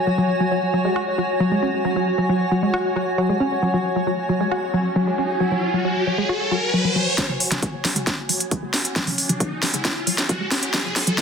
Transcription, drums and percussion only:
7.18 kick, snare, closed hi-hat
7.29 mid tom
7.40 open hi-hat
7.52 snare, closed hi-hat, mid tom
7.63 kick, closed hi-hat
7.85 snare, open hi-hat
7.96 closed hi-hat, mid tom
8.07 kick, snare, closed hi-hat
8.29 open hi-hat
8.40 closed hi-hat
8.51 kick, closed hi-hat
8.74 snare, open hi-hat
8.85 closed hi-hat
8.96 kick, snare, closed hi-hat
9.07 open hi-hat, mid tom
9.18 open hi-hat
9.29 closed hi-hat, mid tom
9.40 kick, closed hi-hat
9.63 snare, open hi-hat
9.74 closed hi-hat, mid tom
9.85 kick, snare, closed hi-hat
10.07 open hi-hat
10.18 snare, closed hi-hat
10.29 kick, closed hi-hat
10.51 snare, open hi-hat
10.63 closed hi-hat
10.74 kick, snare, closed hi-hat
10.85 mid tom
10.96 snare, open hi-hat
11.07 closed hi-hat, mid tom
11.18 kick, snare, closed hi-hat

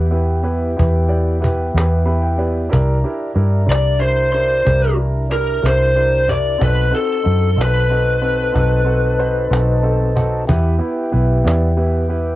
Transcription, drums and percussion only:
0.48 cajon slap
0.79 cajon bass
1.44 cajon bass
1.77 cajon slap
2.41 cajon slap
2.73 cajon bass
3.39 cajon slap
3.72 cajon slap
4.35 cajon slap
4.67 cajon bass, cajon slap
5.32 cajon slap
5.66 cajon slap
6.29 cajon bass
6.61 cajon bass
7.26 cajon slap
7.61 cajon slap
8.24 cajon slap
8.55 cajon bass, cajon slap
9.20 cajon slap
9.53 cajon slap
10.17 cajon bass
10.49 cajon bass
11.14 cajon slap
11.48 cajon slap
12.11 cajon slap

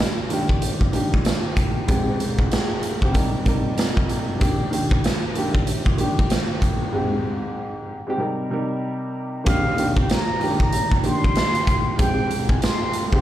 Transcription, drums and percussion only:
0.00 snare
0.30 closed hi-hat
0.49 kick
0.62 closed hi-hat
0.81 kick
0.93 closed hi-hat
1.14 kick
1.25 snare, closed hi-hat
1.57 kick, closed hi-hat
1.88 kick, closed hi-hat
2.20 closed hi-hat
2.39 kick
2.52 snare, closed hi-hat
2.83 closed hi-hat
3.02 kick
3.14 kick, closed hi-hat
3.46 kick, closed hi-hat
3.78 snare, closed hi-hat
3.97 kick
4.09 closed hi-hat
4.41 kick, closed hi-hat
4.73 closed hi-hat
4.91 kick
5.04 snare, closed hi-hat
5.35 closed hi-hat
5.55 kick
5.67 closed hi-hat
5.86 kick
5.98 closed hi-hat
6.19 kick
6.30 snare, closed hi-hat
6.62 kick, closed hi-hat
9.46 kick, closed hi-hat
9.78 closed hi-hat
9.97 kick
10.10 snare, closed hi-hat
10.41 open hi-hat
10.60 kick
10.72 closed hi-hat
10.92 kick
11.04 closed hi-hat
11.24 kick
11.35 snare, closed hi-hat
11.55 closed hi-hat
11.67 kick, closed hi-hat
11.99 kick, closed hi-hat
12.31 closed hi-hat
12.49 kick
12.62 snare, closed hi-hat
12.93 closed hi-hat
13.13 kick

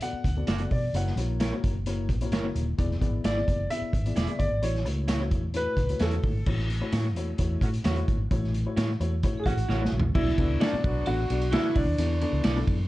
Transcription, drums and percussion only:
0.01 closed hi-hat, muted conga
0.24 kick, closed hi-hat
0.47 snare, closed hi-hat, high conga
0.58 closed hi-hat
0.71 kick, open hi-hat, high conga
0.94 closed hi-hat, muted conga
1.07 snare
1.17 closed hi-hat, muted conga
1.40 snare, closed hi-hat, high conga
1.64 kick, closed hi-hat
1.86 closed hi-hat, muted conga
2.09 kick, closed hi-hat, low conga
2.21 closed hi-hat
2.32 snare, closed hi-hat, high conga
2.56 closed hi-hat, high conga
2.78 kick, closed hi-hat, muted conga
2.91 snare
3.01 kick, closed hi-hat, muted conga
3.24 snare, closed hi-hat, high conga
3.37 snare
3.48 kick, closed hi-hat
3.70 closed hi-hat, muted conga
3.93 kick, closed hi-hat
4.06 closed hi-hat
4.16 snare, closed hi-hat, high conga
4.27 closed hi-hat
4.40 kick, closed hi-hat, high conga
4.63 closed hi-hat, muted conga
4.75 snare
4.85 closed hi-hat, muted conga
5.08 snare, closed hi-hat, high conga
5.20 snare
5.31 kick, closed hi-hat
5.54 closed hi-hat
5.77 kick, closed hi-hat, low conga
5.89 closed hi-hat
5.99 snare, closed hi-hat, high conga
6.11 closed hi-hat
6.23 kick, open hi-hat, high conga
6.46 kick, crash, muted conga
6.59 snare
6.69 closed hi-hat, muted conga
6.92 snare, closed hi-hat, high conga
7.05 snare
7.16 closed hi-hat
7.38 kick, closed hi-hat
7.61 kick, closed hi-hat
7.74 closed hi-hat
7.84 snare, closed hi-hat, high conga
7.96 closed hi-hat
8.08 kick, closed hi-hat, high conga
8.31 kick, closed hi-hat, muted conga
8.44 snare
8.54 closed hi-hat, muted conga
8.77 snare, closed hi-hat, high conga
8.89 snare
9.01 closed hi-hat
9.23 kick, closed hi-hat, muted conga
9.46 kick, closed hi-hat, low conga
9.58 closed hi-hat
9.69 snare, high conga
9.85 snare
9.93 high conga
10.00 floor tom
10.15 kick, crash, muted conga
10.28 snare
10.38 kick, ride, muted conga
10.61 snare, ride, high conga
10.73 snare
10.84 kick, ride
11.06 ride
11.30 ride
11.41 ride
11.52 snare, ride, high conga
11.63 ride
11.75 kick, open hi-hat, ride, high conga
11.98 hi-hat pedal, ride, muted conga
12.21 ride, muted conga
12.44 snare, ride, high conga
12.56 snare
12.67 kick, ride

